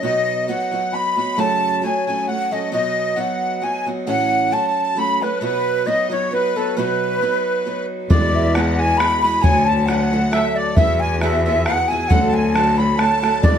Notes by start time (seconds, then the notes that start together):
0.03 B2 F#3 B3 D#4 F#4 D#5
0.48 F#3 B3 D#4 F#4 F#5
0.71 F#3 B3 D#4 F#4
0.92 F#3 B3 D#4 F#4 B5
1.16 F#3 B3 D#4 F#4 B5
1.37 F#2 C#3 F#3 A3 C#4 F#4 A5
1.82 F#3 A3 C#4 F#4 G#5
2.06 F#3 A3 C#4 F#4 G#5
2.27 F#3 A3 C#4 F#4 F#5
2.51 F#3 A3 C#4 F#4 D#5
2.72 B2 F#3 B3 D#4 F#4 D#5
3.16 F#3 B3 D#4 F#4 F#5
3.20 F#5
3.62 F#3 B3 D#4 F#4 G#5
3.86 F#3 B3 D#4 F#4
4.07 A2 E3 F#3 A3 C#4 F#4 F#5
4.51 F#3 A3 C#4 F#4 A5
4.67 A5
4.83 A5
4.95 F#3 A3 C#4 F#4 B5
5.21 F#3 A3 C#4 F#4 B4
5.41 B2 F#3 B3 D#4 F#4 B4
5.85 F#3 B3 D#4 F#4 D#5
6.10 F#3 B3 D#4 F#4 C#5
6.31 F#3 B3 D#4 F#4 B4
6.56 F#3 B3 D#4 F#4 A4
6.76 B2 F#3 B3 D#4 F#4 B4
7.21 F#3 B3 D#4 F#4
7.65 F#3 B3 D#4 F#4
8.09 E2 E3 G#3 B3 E4 F#4 D5, bodhran
8.35 E5
8.54 G#3 B3 E4 F#4 F#5, bodhran
8.77 G#5
8.97 G#3 B3 B5, bodhran
9.01 E4 F#4
9.21 G#3 B3 E4 B5
9.25 F#4
9.41 D2 D3 F#3 A3 F#4 A4 G#5, bodhran
9.64 A5
9.85 F#3 A3 F#5, bodhran
9.89 F#4 A4 F#5
10.11 F#3 A3 F#4 A4
10.31 F#3 A3 F#4 A4 E5, bodhran
10.55 D5
10.74 E2 E3 B3 F#4 E5, bodhran
10.78 G#4 E5
10.99 G#5
11.19 E3 B3 F#4 E5, bodhran
11.24 G#4
11.44 E3 B3 F#4 E5
11.49 G#4
11.64 E3 F#5, bodhran
11.68 B3 F#4 G#4
11.88 E3 B3 G#5
11.92 F#4 G#4
12.07 D2 D3 F#3 A3 F#4 F#5, bodhran
12.12 A4
12.28 A5
12.33 G#5
12.54 F#3 A3 F#4 A4 A5, bodhran
12.77 F#3 A3 F#4 A4 B5
12.97 F#3 A3 F#4 A4 A5, bodhran
13.22 F#3 A3 F#4 A4, bodhran
13.42 E2 E3 G#3 B3 E4 F#4 D5, bodhran